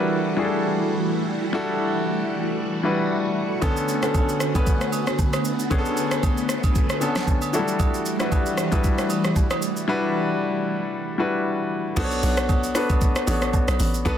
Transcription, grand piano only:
0.00 0.37 G3 medium
0.00 0.37 D4 medium
0.00 0.38 E4 medium
0.00 0.38 F#4 medium
0.00 0.45 A4 loud
0.00 3.65 A#4 medium
0.00 0.30 B4 loud
0.00 3.64 E5 medium
0.37 1.20 G3 medium
0.37 1.20 D4 medium
0.37 1.20 E4 medium
0.37 1.21 F#4 medium
0.37 0.44 G#4 medium
0.45 1.24 A4 medium
1.53 2.37 G3 loud
1.53 2.38 D4 loud
1.53 2.38 E4 loud
1.53 2.38 F#4 loud
1.53 2.38 A4 loud
2.83 3.47 G3 medium
2.83 3.48 D4 medium
2.83 3.48 E4 medium
2.83 3.48 F#4 medium
2.83 3.48 B4 medium
3.62 3.94 D3 loud
3.62 3.94 B3 loud
3.62 3.94 C#4 loud
3.62 3.95 A4 loud
4.02 4.43 D3 medium
4.02 4.43 B3 medium
4.02 4.44 C#4 medium
4.02 4.44 A4 medium
4.54 5.38 D3 medium
4.54 5.38 B3 medium
4.54 5.38 C#4 medium
4.54 5.38 B4 medium
5.70 6.55 D3 loud
5.70 6.55 B3 loud
5.70 6.55 C#4 loud
5.70 5.78 G#4 medium
5.78 6.59 A4 loud
7.01 7.53 D3 medium
7.01 7.53 B3 medium
7.01 7.54 C#4 medium
7.01 7.53 A4 medium
7.53 7.60 F#3 medium
7.53 8.06 D4 medium
7.53 8.06 E4 medium
7.53 8.06 F#4 medium
7.53 8.06 A4 loud
7.59 8.09 G3 medium
8.19 8.60 G3 medium
8.19 8.61 D4 medium
8.19 8.61 E4 medium
8.19 8.61 F#4 medium
8.19 8.61 B4 medium
8.72 9.55 G3 medium
8.72 9.55 D4 medium
8.72 9.55 E4 medium
8.72 9.56 F#4 medium
8.72 9.56 B4 medium
9.88 10.72 G3 loud
9.88 10.72 D4 loud
9.88 10.72 E4 loud
9.88 10.73 F#4 loud
9.88 10.73 B4 loud
11.18 11.82 G3 medium
11.18 11.82 D4 medium
11.18 11.83 E4 medium
11.18 11.83 F#4 medium
11.18 11.83 B4 medium
11.96 12.60 B3 loud
11.96 12.61 D4 loud
11.96 12.61 F#4 loud
11.96 12.61 A4 loud
11.96 12.05 C5 loud
12.04 12.64 C#5 loud
12.75 13.18 B3 medium
12.75 13.18 D4 medium
12.75 13.18 F#4 medium
12.75 13.18 A4 medium
12.75 13.19 B4 medium
13.27 13.91 B3 medium
13.27 13.91 D4 medium
13.27 13.91 F#4 medium
13.27 13.91 A4 medium
13.27 13.92 C#5 medium
14.05 14.18 B3 loud
14.05 14.18 D4 loud
14.05 14.18 F#4 loud
14.05 14.18 A4 loud
14.05 14.18 B4 loud

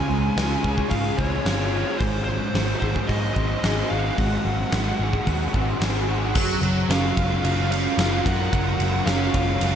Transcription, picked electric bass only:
0.10 0.28 C#2 medium
0.37 0.55 C#2 medium
0.64 0.83 C#2 medium
0.91 1.10 G#2 medium
1.19 1.37 C#2 medium
1.45 1.83 G1 medium
2.01 2.38 G#1 medium
2.54 2.73 G#1 medium
2.82 3.01 G#1 medium
3.09 3.28 G#2 medium
3.36 3.55 G#1 medium
3.63 3.82 G#1 medium
3.91 4.10 G#1 medium
4.18 4.37 G#1 medium
4.45 4.64 G#1 medium
4.72 4.91 G#1 medium
4.99 5.18 G#1 medium
5.27 5.45 D#2 medium
5.55 5.73 G#1 medium
5.80 6.35 G#1 medium
6.35 6.57 F#1 medium
6.62 6.83 F#1 medium
6.89 7.10 F#1 loud
7.17 7.39 F#1 medium
7.43 7.86 F#1 medium
7.98 8.19 F#1 loud
8.26 8.47 F#2 medium
8.53 8.74 F#1 loud
8.79 9.01 F#1 loud
9.06 9.28 F#1 loud
9.35 9.56 F#1 medium
9.61 9.75 F#1 medium

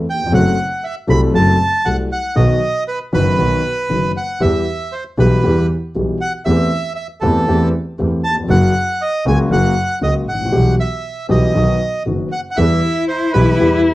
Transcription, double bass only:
0.34 0.55 F#1 medium
1.09 1.30 C2 medium
1.35 1.56 F#1 medium
1.86 2.07 C2 medium
2.37 2.58 B1 medium
3.13 3.34 F#1 medium
3.38 3.60 B1 medium
3.90 4.11 F#1 medium
4.41 4.63 E2 medium
5.18 5.40 B1 medium
5.44 5.66 E2 medium
5.95 6.17 B1 medium
6.47 6.68 E2 medium
7.22 7.44 E2 medium
7.48 7.69 E2 medium
7.99 8.20 E2 medium
8.49 8.71 F#1 medium
9.26 9.47 C#2 medium
9.51 9.72 F#1 medium
10.02 10.23 C#2 medium
10.27 10.52 A1 soft
10.52 10.74 B1 medium
11.30 11.51 B1 medium
11.55 11.77 B1 medium
12.06 12.28 F#1 soft
12.58 12.79 E2 medium
13.36 13.57 B1 medium
13.61 13.82 E2 medium

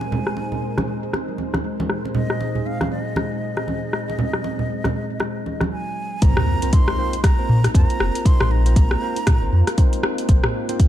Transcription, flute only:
0.00 1.35 G#5 medium
2.15 2.67 D#5 loud
2.66 2.91 F5 loud
2.91 5.67 D#5 loud
5.72 6.23 G#5 medium
6.22 6.75 A#5 loud
6.73 7.24 C6 loud
7.24 7.71 A#5 loud
7.75 8.27 A#5 loud
8.26 8.53 C6 loud
8.51 10.04 A#5 loud

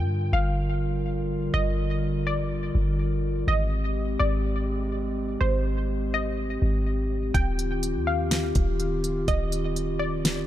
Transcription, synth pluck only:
0.00 0.29 G5 loud
0.33 1.50 F5 medium
1.54 2.22 D#5 loud
2.27 3.44 D5 medium
3.48 4.16 D#5 medium
4.19 5.37 D5 medium
5.41 6.09 C5 medium
6.14 7.31 D#5 loud
7.34 8.03 G5 loud
8.07 9.24 F5 medium
9.28 9.97 D#5 loud
9.99 10.47 D5 medium

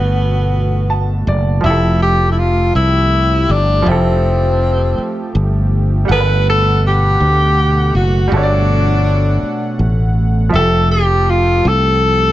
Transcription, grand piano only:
0.00 1.58 G3 medium
0.00 1.59 F#4 medium
0.00 1.61 A4 soft
0.00 1.62 B4 medium
0.90 1.24 A5 medium
1.28 1.62 D5 medium
1.61 3.81 F3 medium
1.61 3.82 E5 medium
1.67 3.84 G4 medium
1.67 3.85 A4 medium
3.82 6.02 F3 medium
3.82 6.04 E4 medium
3.88 6.05 G4 medium
3.88 6.07 A4 medium
6.05 8.25 G3 medium
6.05 8.26 F#5 medium
6.11 8.28 A4 medium
6.11 6.18 A#4 medium
6.20 8.33 B4 medium
8.28 10.47 G3 medium
8.28 10.49 F#4 medium
8.34 10.50 A4 medium
8.34 8.40 C#5 medium
8.43 10.55 D5 medium
10.49 12.32 F3 medium
10.49 12.32 E5 medium
10.56 12.32 G4 medium
10.56 12.32 A4 medium

